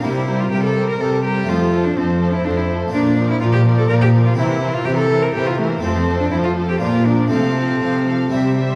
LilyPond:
<<
  \new Staff \with { instrumentName = "Violin section" } { \time 3/4 \key f \major \tempo 4 = 124 c''8 c''8 c''8 c''8 c''8 c''8 | c''8 c''8 c''8 c''8 c''8 c''8 | d''8 d''8 d''8 d''8 d''8 d''8 | c''8 c''8 c''8 c''8 c''8 c''8 |
c''8 c''8 c''8 c''8 d''8 d''8 | f''8 f''8 f''8 f''8 e''8 e''8 | }
  \new Staff \with { instrumentName = "Violin section" } { \time 3/4 \key f \major bes'8 bes'8 bes'8 bes'8 bes'8 bes'8 | a'8 a'8 a'8 a'8 a'8 a'8 | bes'8 bes'8 bes'8 bes'8 bes'8 bes'8 | bes'8 bes'8 bes'8 bes'8 bes'8 bes'8 |
a'8 a'8 a'8 a'8 bes'8 bes'8 | a'8 a'8 a'8 a'8 c''8 c''8 | }
  \new Staff \with { instrumentName = "Cello" } { \time 3/4 \key f \major e'16 e'8 f'16 g'16 a'8 bes'16 a'8 g'8 | f'8. d'16 c'8. e'16 d'16 e'16 r8 | d'16 d'8 e'16 f'16 g'8 a'16 bes'16 g'8 f'16 | e'16 e'8 f'16 g'16 a'8 bes'16 g'16 f'16 a16 bes16 |
c'16 c'8 d'16 e'16 f'8 g'16 f'8 d'8 | c'2~ c'8 r8 | }
  \new Staff \with { instrumentName = "Viola section" } { \clef bass \time 3/4 \key f \major g8 g8 g8 g8 g8 g8 | f8 f8 f8 f8 f8 f8 | f8 f8 f8 f8 f8 f8 | e8 e8 e8 e8 e8 e8 |
f8 f8 f8 f8 f8 f8 | f8 f8 f8 f8 g8 g8 | }
  \new Staff \with { instrumentName = "Harpsichord" } { \time 3/4 \key f \major <bes c'>2. | <a c'>2. | <bes d'>2. | <bes c'>2. |
<a c'>2 <bes d'>4 | <a c'>2 <c' e'>4 | }
  \new Staff \with { instrumentName = "Harpsichord" } { \clef bass \time 3/4 \key f \major c4 c4 c4 | f,4 f,4 f,4 | bes,4 bes,4 bes,4 | c4 c4 c4 |
f,4 f,4 bes,4 | c4 c4 c4 | }
  \new Staff \with { instrumentName = "Cello section" } { \clef bass \time 3/4 \key f \major c4 c4 c4 | f,4 f,4 f,4 | bes,4 bes,4 bes,4 | c4 c4 c4 |
f,4 f,4 bes,4 | c4 c4 c4 | }
>>